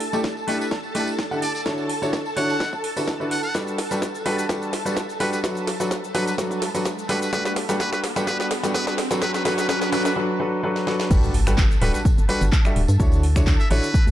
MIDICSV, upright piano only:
0, 0, Header, 1, 2, 480
1, 0, Start_track
1, 0, Key_signature, 2, "major"
1, 0, Tempo, 472441
1, 1685, Time_signature, 4, 2, 24, 8
1, 14336, End_track
2, 0, Start_track
2, 0, Title_t, "Upright piano"
2, 0, Program_c, 0, 0
2, 133, Note_on_c, 0, 57, 82
2, 133, Note_on_c, 0, 62, 71
2, 133, Note_on_c, 0, 64, 75
2, 133, Note_on_c, 0, 67, 75
2, 133, Note_on_c, 0, 69, 76
2, 133, Note_on_c, 0, 74, 85
2, 258, Note_off_c, 0, 57, 0
2, 258, Note_off_c, 0, 62, 0
2, 258, Note_off_c, 0, 64, 0
2, 258, Note_off_c, 0, 67, 0
2, 258, Note_off_c, 0, 69, 0
2, 258, Note_off_c, 0, 74, 0
2, 484, Note_on_c, 0, 57, 91
2, 484, Note_on_c, 0, 62, 91
2, 484, Note_on_c, 0, 64, 85
2, 484, Note_on_c, 0, 67, 89
2, 484, Note_on_c, 0, 69, 87
2, 484, Note_on_c, 0, 74, 102
2, 625, Note_off_c, 0, 57, 0
2, 625, Note_off_c, 0, 62, 0
2, 625, Note_off_c, 0, 64, 0
2, 625, Note_off_c, 0, 67, 0
2, 625, Note_off_c, 0, 69, 0
2, 625, Note_off_c, 0, 74, 0
2, 964, Note_on_c, 0, 57, 93
2, 964, Note_on_c, 0, 62, 84
2, 964, Note_on_c, 0, 64, 84
2, 964, Note_on_c, 0, 67, 84
2, 964, Note_on_c, 0, 69, 84
2, 964, Note_on_c, 0, 74, 105
2, 1105, Note_off_c, 0, 57, 0
2, 1105, Note_off_c, 0, 62, 0
2, 1105, Note_off_c, 0, 64, 0
2, 1105, Note_off_c, 0, 67, 0
2, 1105, Note_off_c, 0, 69, 0
2, 1105, Note_off_c, 0, 74, 0
2, 1332, Note_on_c, 0, 64, 74
2, 1333, Note_on_c, 0, 50, 79
2, 1333, Note_on_c, 0, 62, 74
2, 1333, Note_on_c, 0, 67, 71
2, 1333, Note_on_c, 0, 69, 73
2, 1333, Note_on_c, 0, 78, 87
2, 1431, Note_off_c, 0, 50, 0
2, 1431, Note_off_c, 0, 62, 0
2, 1431, Note_off_c, 0, 64, 0
2, 1431, Note_off_c, 0, 67, 0
2, 1431, Note_off_c, 0, 69, 0
2, 1431, Note_off_c, 0, 78, 0
2, 1684, Note_on_c, 0, 50, 76
2, 1684, Note_on_c, 0, 64, 72
2, 1684, Note_on_c, 0, 66, 69
2, 1684, Note_on_c, 0, 69, 69
2, 1684, Note_on_c, 0, 73, 85
2, 1685, Note_on_c, 0, 62, 68
2, 1899, Note_off_c, 0, 50, 0
2, 1899, Note_off_c, 0, 62, 0
2, 1899, Note_off_c, 0, 64, 0
2, 1899, Note_off_c, 0, 66, 0
2, 1899, Note_off_c, 0, 69, 0
2, 1899, Note_off_c, 0, 73, 0
2, 2053, Note_on_c, 0, 50, 79
2, 2053, Note_on_c, 0, 62, 73
2, 2053, Note_on_c, 0, 64, 72
2, 2053, Note_on_c, 0, 66, 73
2, 2053, Note_on_c, 0, 69, 74
2, 2053, Note_on_c, 0, 73, 89
2, 2178, Note_off_c, 0, 50, 0
2, 2178, Note_off_c, 0, 62, 0
2, 2178, Note_off_c, 0, 64, 0
2, 2178, Note_off_c, 0, 66, 0
2, 2178, Note_off_c, 0, 69, 0
2, 2178, Note_off_c, 0, 73, 0
2, 2403, Note_on_c, 0, 50, 95
2, 2403, Note_on_c, 0, 62, 89
2, 2403, Note_on_c, 0, 66, 88
2, 2403, Note_on_c, 0, 69, 84
2, 2404, Note_on_c, 0, 64, 85
2, 2404, Note_on_c, 0, 73, 108
2, 2544, Note_off_c, 0, 50, 0
2, 2544, Note_off_c, 0, 62, 0
2, 2544, Note_off_c, 0, 64, 0
2, 2544, Note_off_c, 0, 66, 0
2, 2544, Note_off_c, 0, 69, 0
2, 2544, Note_off_c, 0, 73, 0
2, 3012, Note_on_c, 0, 50, 67
2, 3012, Note_on_c, 0, 62, 65
2, 3012, Note_on_c, 0, 64, 65
2, 3012, Note_on_c, 0, 66, 66
2, 3012, Note_on_c, 0, 69, 63
2, 3012, Note_on_c, 0, 71, 77
2, 3138, Note_off_c, 0, 50, 0
2, 3138, Note_off_c, 0, 62, 0
2, 3138, Note_off_c, 0, 64, 0
2, 3138, Note_off_c, 0, 66, 0
2, 3138, Note_off_c, 0, 69, 0
2, 3138, Note_off_c, 0, 71, 0
2, 3252, Note_on_c, 0, 50, 76
2, 3252, Note_on_c, 0, 62, 67
2, 3252, Note_on_c, 0, 64, 68
2, 3252, Note_on_c, 0, 66, 66
2, 3252, Note_on_c, 0, 69, 67
2, 3252, Note_on_c, 0, 71, 82
2, 3378, Note_off_c, 0, 50, 0
2, 3378, Note_off_c, 0, 62, 0
2, 3378, Note_off_c, 0, 64, 0
2, 3378, Note_off_c, 0, 66, 0
2, 3378, Note_off_c, 0, 69, 0
2, 3378, Note_off_c, 0, 71, 0
2, 3604, Note_on_c, 0, 55, 70
2, 3604, Note_on_c, 0, 62, 67
2, 3604, Note_on_c, 0, 66, 65
2, 3604, Note_on_c, 0, 67, 64
2, 3604, Note_on_c, 0, 69, 65
2, 3604, Note_on_c, 0, 71, 79
2, 3819, Note_off_c, 0, 55, 0
2, 3819, Note_off_c, 0, 62, 0
2, 3819, Note_off_c, 0, 66, 0
2, 3819, Note_off_c, 0, 67, 0
2, 3819, Note_off_c, 0, 69, 0
2, 3819, Note_off_c, 0, 71, 0
2, 3972, Note_on_c, 0, 55, 77
2, 3972, Note_on_c, 0, 62, 67
2, 3972, Note_on_c, 0, 66, 69
2, 3972, Note_on_c, 0, 67, 68
2, 3972, Note_on_c, 0, 69, 69
2, 3972, Note_on_c, 0, 71, 80
2, 4098, Note_off_c, 0, 55, 0
2, 4098, Note_off_c, 0, 62, 0
2, 4098, Note_off_c, 0, 66, 0
2, 4098, Note_off_c, 0, 67, 0
2, 4098, Note_off_c, 0, 69, 0
2, 4098, Note_off_c, 0, 71, 0
2, 4324, Note_on_c, 0, 55, 84
2, 4324, Note_on_c, 0, 62, 82
2, 4324, Note_on_c, 0, 66, 84
2, 4324, Note_on_c, 0, 67, 77
2, 4324, Note_on_c, 0, 69, 81
2, 4324, Note_on_c, 0, 71, 96
2, 4465, Note_off_c, 0, 55, 0
2, 4465, Note_off_c, 0, 62, 0
2, 4465, Note_off_c, 0, 66, 0
2, 4465, Note_off_c, 0, 67, 0
2, 4465, Note_off_c, 0, 69, 0
2, 4465, Note_off_c, 0, 71, 0
2, 4564, Note_on_c, 0, 55, 69
2, 4564, Note_on_c, 0, 62, 65
2, 4564, Note_on_c, 0, 66, 62
2, 4564, Note_on_c, 0, 67, 65
2, 4564, Note_on_c, 0, 69, 62
2, 4564, Note_on_c, 0, 71, 75
2, 4779, Note_off_c, 0, 55, 0
2, 4779, Note_off_c, 0, 62, 0
2, 4779, Note_off_c, 0, 66, 0
2, 4779, Note_off_c, 0, 67, 0
2, 4779, Note_off_c, 0, 69, 0
2, 4779, Note_off_c, 0, 71, 0
2, 4932, Note_on_c, 0, 55, 73
2, 4932, Note_on_c, 0, 62, 70
2, 4932, Note_on_c, 0, 66, 66
2, 4932, Note_on_c, 0, 67, 65
2, 4932, Note_on_c, 0, 69, 68
2, 4932, Note_on_c, 0, 71, 81
2, 5058, Note_off_c, 0, 55, 0
2, 5058, Note_off_c, 0, 62, 0
2, 5058, Note_off_c, 0, 66, 0
2, 5058, Note_off_c, 0, 67, 0
2, 5058, Note_off_c, 0, 69, 0
2, 5058, Note_off_c, 0, 71, 0
2, 5284, Note_on_c, 0, 55, 89
2, 5284, Note_on_c, 0, 62, 80
2, 5284, Note_on_c, 0, 66, 81
2, 5284, Note_on_c, 0, 67, 81
2, 5284, Note_on_c, 0, 69, 86
2, 5284, Note_on_c, 0, 71, 100
2, 5425, Note_off_c, 0, 55, 0
2, 5425, Note_off_c, 0, 62, 0
2, 5425, Note_off_c, 0, 66, 0
2, 5425, Note_off_c, 0, 67, 0
2, 5425, Note_off_c, 0, 69, 0
2, 5425, Note_off_c, 0, 71, 0
2, 5525, Note_on_c, 0, 54, 74
2, 5525, Note_on_c, 0, 62, 65
2, 5525, Note_on_c, 0, 66, 67
2, 5525, Note_on_c, 0, 69, 69
2, 5525, Note_on_c, 0, 71, 85
2, 5739, Note_off_c, 0, 54, 0
2, 5739, Note_off_c, 0, 62, 0
2, 5739, Note_off_c, 0, 66, 0
2, 5739, Note_off_c, 0, 69, 0
2, 5739, Note_off_c, 0, 71, 0
2, 5892, Note_on_c, 0, 54, 76
2, 5892, Note_on_c, 0, 66, 73
2, 5892, Note_on_c, 0, 69, 74
2, 5893, Note_on_c, 0, 62, 70
2, 5893, Note_on_c, 0, 71, 83
2, 6018, Note_off_c, 0, 54, 0
2, 6018, Note_off_c, 0, 62, 0
2, 6018, Note_off_c, 0, 66, 0
2, 6018, Note_off_c, 0, 69, 0
2, 6018, Note_off_c, 0, 71, 0
2, 6244, Note_on_c, 0, 54, 91
2, 6244, Note_on_c, 0, 62, 83
2, 6244, Note_on_c, 0, 66, 84
2, 6244, Note_on_c, 0, 69, 84
2, 6244, Note_on_c, 0, 71, 102
2, 6385, Note_off_c, 0, 54, 0
2, 6385, Note_off_c, 0, 62, 0
2, 6385, Note_off_c, 0, 66, 0
2, 6385, Note_off_c, 0, 69, 0
2, 6385, Note_off_c, 0, 71, 0
2, 6484, Note_on_c, 0, 66, 68
2, 6484, Note_on_c, 0, 69, 68
2, 6485, Note_on_c, 0, 54, 76
2, 6485, Note_on_c, 0, 62, 69
2, 6485, Note_on_c, 0, 71, 78
2, 6699, Note_off_c, 0, 54, 0
2, 6699, Note_off_c, 0, 62, 0
2, 6699, Note_off_c, 0, 66, 0
2, 6699, Note_off_c, 0, 69, 0
2, 6699, Note_off_c, 0, 71, 0
2, 6853, Note_on_c, 0, 54, 75
2, 6853, Note_on_c, 0, 62, 72
2, 6853, Note_on_c, 0, 66, 66
2, 6853, Note_on_c, 0, 69, 69
2, 6853, Note_on_c, 0, 71, 85
2, 6978, Note_off_c, 0, 54, 0
2, 6978, Note_off_c, 0, 62, 0
2, 6978, Note_off_c, 0, 66, 0
2, 6978, Note_off_c, 0, 69, 0
2, 6978, Note_off_c, 0, 71, 0
2, 7204, Note_on_c, 0, 55, 93
2, 7204, Note_on_c, 0, 62, 85
2, 7204, Note_on_c, 0, 67, 85
2, 7204, Note_on_c, 0, 69, 86
2, 7204, Note_on_c, 0, 71, 102
2, 7205, Note_on_c, 0, 66, 83
2, 7345, Note_off_c, 0, 55, 0
2, 7345, Note_off_c, 0, 62, 0
2, 7345, Note_off_c, 0, 66, 0
2, 7345, Note_off_c, 0, 67, 0
2, 7345, Note_off_c, 0, 69, 0
2, 7345, Note_off_c, 0, 71, 0
2, 7445, Note_on_c, 0, 55, 76
2, 7445, Note_on_c, 0, 62, 71
2, 7445, Note_on_c, 0, 66, 69
2, 7445, Note_on_c, 0, 67, 71
2, 7445, Note_on_c, 0, 69, 70
2, 7445, Note_on_c, 0, 71, 86
2, 7659, Note_off_c, 0, 55, 0
2, 7659, Note_off_c, 0, 62, 0
2, 7659, Note_off_c, 0, 66, 0
2, 7659, Note_off_c, 0, 67, 0
2, 7659, Note_off_c, 0, 69, 0
2, 7659, Note_off_c, 0, 71, 0
2, 7813, Note_on_c, 0, 55, 82
2, 7813, Note_on_c, 0, 62, 73
2, 7813, Note_on_c, 0, 67, 74
2, 7813, Note_on_c, 0, 69, 72
2, 7813, Note_on_c, 0, 71, 90
2, 7814, Note_on_c, 0, 66, 74
2, 7907, Note_off_c, 0, 55, 0
2, 7907, Note_off_c, 0, 62, 0
2, 7907, Note_off_c, 0, 66, 0
2, 7907, Note_off_c, 0, 67, 0
2, 7907, Note_off_c, 0, 69, 0
2, 7907, Note_off_c, 0, 71, 0
2, 7925, Note_on_c, 0, 55, 71
2, 7925, Note_on_c, 0, 62, 66
2, 7925, Note_on_c, 0, 66, 68
2, 7925, Note_on_c, 0, 67, 65
2, 7925, Note_on_c, 0, 69, 68
2, 8139, Note_off_c, 0, 55, 0
2, 8139, Note_off_c, 0, 62, 0
2, 8139, Note_off_c, 0, 66, 0
2, 8139, Note_off_c, 0, 67, 0
2, 8139, Note_off_c, 0, 69, 0
2, 8293, Note_on_c, 0, 55, 81
2, 8293, Note_on_c, 0, 62, 74
2, 8293, Note_on_c, 0, 66, 69
2, 8293, Note_on_c, 0, 67, 73
2, 8293, Note_on_c, 0, 69, 75
2, 8293, Note_on_c, 0, 71, 91
2, 8386, Note_off_c, 0, 66, 0
2, 8387, Note_off_c, 0, 55, 0
2, 8387, Note_off_c, 0, 62, 0
2, 8387, Note_off_c, 0, 67, 0
2, 8387, Note_off_c, 0, 69, 0
2, 8387, Note_off_c, 0, 71, 0
2, 8405, Note_on_c, 0, 55, 77
2, 8405, Note_on_c, 0, 62, 71
2, 8405, Note_on_c, 0, 66, 69
2, 8405, Note_on_c, 0, 67, 70
2, 8405, Note_on_c, 0, 69, 68
2, 8405, Note_on_c, 0, 71, 83
2, 8619, Note_off_c, 0, 55, 0
2, 8619, Note_off_c, 0, 62, 0
2, 8619, Note_off_c, 0, 66, 0
2, 8619, Note_off_c, 0, 67, 0
2, 8619, Note_off_c, 0, 69, 0
2, 8619, Note_off_c, 0, 71, 0
2, 8773, Note_on_c, 0, 55, 78
2, 8773, Note_on_c, 0, 62, 71
2, 8773, Note_on_c, 0, 66, 73
2, 8773, Note_on_c, 0, 67, 71
2, 8773, Note_on_c, 0, 69, 73
2, 8773, Note_on_c, 0, 71, 83
2, 8866, Note_off_c, 0, 55, 0
2, 8866, Note_off_c, 0, 62, 0
2, 8866, Note_off_c, 0, 66, 0
2, 8866, Note_off_c, 0, 67, 0
2, 8866, Note_off_c, 0, 69, 0
2, 8867, Note_off_c, 0, 71, 0
2, 8884, Note_on_c, 0, 62, 73
2, 8884, Note_on_c, 0, 67, 71
2, 8884, Note_on_c, 0, 69, 72
2, 8885, Note_on_c, 0, 55, 79
2, 8885, Note_on_c, 0, 66, 71
2, 8885, Note_on_c, 0, 71, 85
2, 9099, Note_off_c, 0, 55, 0
2, 9099, Note_off_c, 0, 62, 0
2, 9099, Note_off_c, 0, 66, 0
2, 9099, Note_off_c, 0, 67, 0
2, 9099, Note_off_c, 0, 69, 0
2, 9099, Note_off_c, 0, 71, 0
2, 9253, Note_on_c, 0, 54, 81
2, 9253, Note_on_c, 0, 62, 74
2, 9253, Note_on_c, 0, 66, 75
2, 9253, Note_on_c, 0, 69, 77
2, 9253, Note_on_c, 0, 71, 88
2, 9347, Note_off_c, 0, 54, 0
2, 9347, Note_off_c, 0, 62, 0
2, 9347, Note_off_c, 0, 66, 0
2, 9347, Note_off_c, 0, 69, 0
2, 9347, Note_off_c, 0, 71, 0
2, 9365, Note_on_c, 0, 54, 81
2, 9365, Note_on_c, 0, 62, 74
2, 9365, Note_on_c, 0, 66, 75
2, 9365, Note_on_c, 0, 69, 76
2, 9579, Note_off_c, 0, 54, 0
2, 9579, Note_off_c, 0, 62, 0
2, 9579, Note_off_c, 0, 66, 0
2, 9579, Note_off_c, 0, 69, 0
2, 9604, Note_on_c, 0, 54, 84
2, 9604, Note_on_c, 0, 62, 76
2, 9604, Note_on_c, 0, 66, 80
2, 9604, Note_on_c, 0, 69, 78
2, 9604, Note_on_c, 0, 71, 93
2, 9819, Note_off_c, 0, 54, 0
2, 9819, Note_off_c, 0, 62, 0
2, 9819, Note_off_c, 0, 66, 0
2, 9819, Note_off_c, 0, 69, 0
2, 9819, Note_off_c, 0, 71, 0
2, 9845, Note_on_c, 0, 54, 74
2, 9845, Note_on_c, 0, 62, 67
2, 9845, Note_on_c, 0, 66, 72
2, 9845, Note_on_c, 0, 69, 67
2, 9845, Note_on_c, 0, 71, 82
2, 10059, Note_off_c, 0, 54, 0
2, 10059, Note_off_c, 0, 62, 0
2, 10059, Note_off_c, 0, 66, 0
2, 10059, Note_off_c, 0, 69, 0
2, 10059, Note_off_c, 0, 71, 0
2, 10084, Note_on_c, 0, 54, 81
2, 10084, Note_on_c, 0, 62, 76
2, 10084, Note_on_c, 0, 66, 73
2, 10084, Note_on_c, 0, 69, 72
2, 10084, Note_on_c, 0, 71, 90
2, 10299, Note_off_c, 0, 54, 0
2, 10299, Note_off_c, 0, 62, 0
2, 10299, Note_off_c, 0, 66, 0
2, 10299, Note_off_c, 0, 69, 0
2, 10299, Note_off_c, 0, 71, 0
2, 10324, Note_on_c, 0, 54, 79
2, 10324, Note_on_c, 0, 62, 72
2, 10324, Note_on_c, 0, 66, 71
2, 10324, Note_on_c, 0, 69, 71
2, 10324, Note_on_c, 0, 71, 90
2, 10539, Note_off_c, 0, 54, 0
2, 10539, Note_off_c, 0, 62, 0
2, 10539, Note_off_c, 0, 66, 0
2, 10539, Note_off_c, 0, 69, 0
2, 10539, Note_off_c, 0, 71, 0
2, 10564, Note_on_c, 0, 54, 81
2, 10564, Note_on_c, 0, 62, 74
2, 10564, Note_on_c, 0, 66, 76
2, 10564, Note_on_c, 0, 71, 95
2, 10565, Note_on_c, 0, 69, 77
2, 10779, Note_off_c, 0, 54, 0
2, 10779, Note_off_c, 0, 62, 0
2, 10779, Note_off_c, 0, 66, 0
2, 10779, Note_off_c, 0, 69, 0
2, 10779, Note_off_c, 0, 71, 0
2, 10804, Note_on_c, 0, 54, 82
2, 10804, Note_on_c, 0, 62, 74
2, 10804, Note_on_c, 0, 66, 74
2, 10804, Note_on_c, 0, 69, 77
2, 10804, Note_on_c, 0, 71, 92
2, 11019, Note_off_c, 0, 54, 0
2, 11019, Note_off_c, 0, 62, 0
2, 11019, Note_off_c, 0, 66, 0
2, 11019, Note_off_c, 0, 69, 0
2, 11019, Note_off_c, 0, 71, 0
2, 11044, Note_on_c, 0, 54, 81
2, 11044, Note_on_c, 0, 62, 75
2, 11044, Note_on_c, 0, 66, 74
2, 11044, Note_on_c, 0, 69, 77
2, 11044, Note_on_c, 0, 71, 89
2, 11259, Note_off_c, 0, 54, 0
2, 11259, Note_off_c, 0, 62, 0
2, 11259, Note_off_c, 0, 66, 0
2, 11259, Note_off_c, 0, 69, 0
2, 11259, Note_off_c, 0, 71, 0
2, 11285, Note_on_c, 0, 55, 77
2, 11285, Note_on_c, 0, 62, 72
2, 11285, Note_on_c, 0, 66, 74
2, 11285, Note_on_c, 0, 67, 72
2, 11285, Note_on_c, 0, 69, 71
2, 11285, Note_on_c, 0, 71, 84
2, 11499, Note_off_c, 0, 55, 0
2, 11499, Note_off_c, 0, 62, 0
2, 11499, Note_off_c, 0, 66, 0
2, 11499, Note_off_c, 0, 67, 0
2, 11499, Note_off_c, 0, 69, 0
2, 11499, Note_off_c, 0, 71, 0
2, 11653, Note_on_c, 0, 66, 76
2, 11654, Note_on_c, 0, 55, 79
2, 11654, Note_on_c, 0, 62, 77
2, 11654, Note_on_c, 0, 67, 75
2, 11654, Note_on_c, 0, 69, 72
2, 11654, Note_on_c, 0, 71, 89
2, 11778, Note_off_c, 0, 66, 0
2, 11779, Note_off_c, 0, 55, 0
2, 11779, Note_off_c, 0, 62, 0
2, 11779, Note_off_c, 0, 67, 0
2, 11779, Note_off_c, 0, 69, 0
2, 11779, Note_off_c, 0, 71, 0
2, 12005, Note_on_c, 0, 55, 99
2, 12005, Note_on_c, 0, 62, 89
2, 12005, Note_on_c, 0, 66, 92
2, 12005, Note_on_c, 0, 67, 86
2, 12005, Note_on_c, 0, 69, 91
2, 12005, Note_on_c, 0, 71, 105
2, 12145, Note_off_c, 0, 55, 0
2, 12145, Note_off_c, 0, 62, 0
2, 12145, Note_off_c, 0, 66, 0
2, 12145, Note_off_c, 0, 67, 0
2, 12145, Note_off_c, 0, 69, 0
2, 12145, Note_off_c, 0, 71, 0
2, 12484, Note_on_c, 0, 55, 95
2, 12484, Note_on_c, 0, 62, 90
2, 12484, Note_on_c, 0, 66, 88
2, 12484, Note_on_c, 0, 67, 86
2, 12484, Note_on_c, 0, 69, 87
2, 12485, Note_on_c, 0, 71, 107
2, 12625, Note_off_c, 0, 55, 0
2, 12625, Note_off_c, 0, 62, 0
2, 12625, Note_off_c, 0, 66, 0
2, 12625, Note_off_c, 0, 67, 0
2, 12625, Note_off_c, 0, 69, 0
2, 12625, Note_off_c, 0, 71, 0
2, 12852, Note_on_c, 0, 55, 81
2, 12852, Note_on_c, 0, 66, 73
2, 12852, Note_on_c, 0, 69, 76
2, 12853, Note_on_c, 0, 62, 76
2, 12853, Note_on_c, 0, 67, 77
2, 12853, Note_on_c, 0, 76, 92
2, 12978, Note_off_c, 0, 55, 0
2, 12978, Note_off_c, 0, 62, 0
2, 12978, Note_off_c, 0, 66, 0
2, 12978, Note_off_c, 0, 67, 0
2, 12978, Note_off_c, 0, 69, 0
2, 12978, Note_off_c, 0, 76, 0
2, 13205, Note_on_c, 0, 50, 77
2, 13205, Note_on_c, 0, 62, 73
2, 13205, Note_on_c, 0, 64, 72
2, 13205, Note_on_c, 0, 66, 73
2, 13205, Note_on_c, 0, 69, 71
2, 13205, Note_on_c, 0, 73, 85
2, 13419, Note_off_c, 0, 50, 0
2, 13419, Note_off_c, 0, 62, 0
2, 13419, Note_off_c, 0, 64, 0
2, 13419, Note_off_c, 0, 66, 0
2, 13419, Note_off_c, 0, 69, 0
2, 13419, Note_off_c, 0, 73, 0
2, 13573, Note_on_c, 0, 50, 83
2, 13573, Note_on_c, 0, 62, 75
2, 13573, Note_on_c, 0, 64, 77
2, 13573, Note_on_c, 0, 66, 80
2, 13573, Note_on_c, 0, 69, 76
2, 13573, Note_on_c, 0, 73, 92
2, 13698, Note_off_c, 0, 50, 0
2, 13698, Note_off_c, 0, 62, 0
2, 13698, Note_off_c, 0, 64, 0
2, 13698, Note_off_c, 0, 66, 0
2, 13698, Note_off_c, 0, 69, 0
2, 13698, Note_off_c, 0, 73, 0
2, 13924, Note_on_c, 0, 66, 88
2, 13924, Note_on_c, 0, 69, 92
2, 13924, Note_on_c, 0, 73, 107
2, 13925, Note_on_c, 0, 50, 99
2, 13925, Note_on_c, 0, 62, 91
2, 13925, Note_on_c, 0, 64, 89
2, 14065, Note_off_c, 0, 50, 0
2, 14065, Note_off_c, 0, 62, 0
2, 14065, Note_off_c, 0, 64, 0
2, 14065, Note_off_c, 0, 66, 0
2, 14065, Note_off_c, 0, 69, 0
2, 14065, Note_off_c, 0, 73, 0
2, 14336, End_track
0, 0, End_of_file